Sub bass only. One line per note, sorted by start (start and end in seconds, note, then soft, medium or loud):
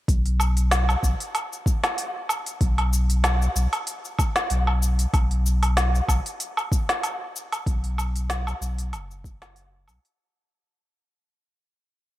0.08 0.96 B1 medium
1.03 1.15 B1 loud
2.61 3.48 B1 medium
3.56 3.67 B1 loud
4.51 5.06 B1 medium
5.14 6.01 B1 medium
6.09 6.20 B1 medium
7.67 8.54 B1 medium
8.61 8.94 B1 loud
8.93 9.89 F#1 loud
9.87 9.99 B1 medium